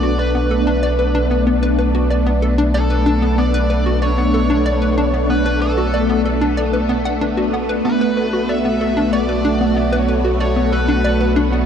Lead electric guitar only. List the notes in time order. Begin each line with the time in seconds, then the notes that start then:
Already playing: D5
0.19 B4
2.75 A4
3.38 D5
4.02 C#5
5.30 B4
5.62 A4
7.85 B4
8.49 E5
9.13 D5
9.99 C#5
10.41 C#5
10.73 B4